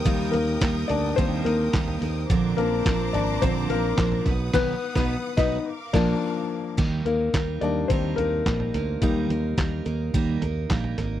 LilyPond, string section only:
\new Staff \with { instrumentName = "String section" } { \time 4/4 \key ees \major \tempo 4 = 107 <bes' g'' ees'''>1 | <c'' bes'' d'''>2.~ <c'' bes'' d'''>8 <b' fis'' dis'''>8~ | <b' fis'' dis'''>2 <bes' f'' d'''>2 | r1 |
r1 | }